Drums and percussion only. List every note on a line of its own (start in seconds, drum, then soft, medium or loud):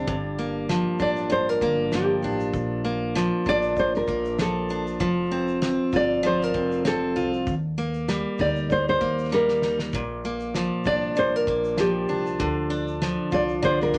0.07 kick loud
0.07 shaker medium
0.39 shaker medium
0.69 snare loud
0.69 shaker medium
0.99 kick loud
0.99 shaker medium
1.16 shaker medium
1.31 shaker medium
1.48 snare soft
1.61 kick loud
1.61 shaker medium
1.92 snare loud
1.92 shaker medium
2.23 shaker medium
2.40 shaker medium
2.53 kick loud
2.53 shaker medium
2.86 shaker medium
3.16 snare loud
3.16 shaker medium
3.45 kick loud
3.45 shaker medium
3.62 shaker medium
3.76 kick medium
3.76 shaker medium
3.94 snare soft
4.07 kick loud
4.07 shaker medium
4.25 shaker medium
4.39 snare loud
4.39 shaker medium
4.69 shaker medium
4.87 shaker medium
5.00 kick loud
5.00 shaker medium
5.32 shaker medium
5.47 shaker soft
5.62 snare loud
5.62 shaker medium
5.92 kick loud
5.92 shaker medium
6.24 shaker medium
6.41 snare soft
6.54 kick loud
6.54 shaker medium
6.72 shaker medium
6.85 snare loud
6.85 shaker medium
7.16 shaker medium
7.34 shaker medium
7.47 kick loud
7.47 shaker medium
7.78 shaker medium
7.94 shaker soft
8.08 snare loud
8.08 shaker medium
8.38 kick loud
8.38 shaker medium
8.56 shaker medium
8.70 kick loud
8.70 shaker medium
8.88 snare soft
9.01 kick loud
9.01 shaker medium
9.19 shaker medium
9.32 snare medium
9.48 snare medium
9.62 snare loud
9.79 snare loud
9.93 kick loud
9.93 shaker medium
10.25 shaker medium
10.40 shaker medium
10.55 snare loud
10.55 shaker medium
10.84 kick loud
10.84 shaker medium
11.16 shaker medium
11.46 kick loud
11.46 shaker medium
11.64 shaker medium
11.77 snare loud
11.77 shaker medium
12.09 shaker medium
12.26 shaker medium
12.40 kick loud
12.40 shaker medium
12.71 shaker medium
12.87 shaker medium
13.02 snare loud
13.02 shaker medium
13.31 kick loud
13.31 shaker medium
13.49 shaker medium
13.63 kick loud
13.63 shaker medium
13.80 snare soft
13.93 kick loud
13.93 shaker medium